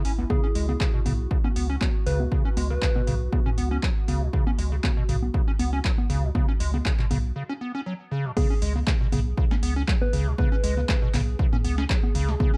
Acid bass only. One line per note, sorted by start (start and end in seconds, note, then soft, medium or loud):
0.05 0.12 C#4 medium
0.18 0.25 C#2 medium
0.30 0.41 C#3 loud
0.44 0.47 C#4 loud
0.55 0.66 G#3 medium
0.69 0.73 C#3 medium
0.80 0.88 C#3 medium
0.94 1.00 B2 loud
1.06 1.13 C#3 loud
1.31 1.38 C#3 medium
1.44 1.48 C#4 loud
1.56 1.67 B3 medium
1.70 1.76 C#4 loud
1.81 1.89 F#3 medium
2.06 2.22 C#3 loud
2.20 2.26 B2 loud
2.32 2.43 C#3 loud
2.45 2.49 C#4 loud
2.57 2.68 G#3 medium
2.70 2.74 C#3 medium
2.82 2.90 C#3 medium
2.96 3.02 B2 loud
3.07 3.15 C#3 loud
3.32 3.40 C#3 medium
3.46 3.50 C#4 loud
3.58 3.69 B3 medium
3.71 3.78 C#4 loud
3.83 3.90 F#3 medium
4.08 4.23 C#3 medium
4.22 4.28 B2 loud
4.33 4.45 C#3 loud
4.47 4.51 C#4 loud
4.58 4.70 G#3 medium
4.72 4.76 C#3 medium
4.84 4.91 C#3 medium
4.97 5.04 B2 loud
5.09 5.16 C#3 loud
5.34 5.42 C#3 medium
5.48 5.52 C#4 loud
5.59 5.71 B3 medium
5.73 5.79 C#4 loud
5.84 5.92 F#3 medium
6.10 6.25 C#3 loud
6.23 6.30 B2 loud
6.35 6.46 C#3 loud
6.49 6.52 C#4 loud
6.60 6.71 G#3 medium
6.74 6.78 C#3 medium
6.85 6.93 C#3 medium
6.99 7.05 B2 loud
7.11 7.18 C#3 loud
7.36 7.43 C#3 medium
7.49 7.53 C#4 loud
7.61 7.72 B3 medium
7.75 7.81 C#4 loud
7.86 7.94 F#3 medium
8.11 8.27 C#3 loud
8.25 8.31 B2 loud
8.37 8.48 C#3 loud
8.50 8.54 C#4 loud
8.62 8.73 G#3 medium
8.76 8.79 C#3 medium
8.87 8.95 C#3 medium
9.01 9.07 B2 loud
9.12 9.20 C#3 loud
9.38 9.45 C#3 medium
9.51 9.55 C#4 medium
9.63 9.74 B3 medium
9.76 9.83 C#4 loud
9.88 9.95 F#3 medium
10.13 10.28 C#3 loud
10.27 10.33 B2 loud
10.38 10.50 C#3 loud
10.52 10.56 C#4 loud
10.64 10.75 G#3 medium
10.77 10.81 C#3 medium
10.89 10.96 C#3 medium
11.02 11.09 B2 loud
11.14 11.21 C#3 loud
11.39 11.47 C#3 medium
11.53 11.57 C#4 loud
11.64 11.76 B3 medium
11.78 11.84 C#4 loud
11.90 11.97 F#3 medium
12.15 12.30 C#3 loud
12.28 12.35 B2 loud
12.40 12.51 C#3 loud
12.54 12.57 C#4 loud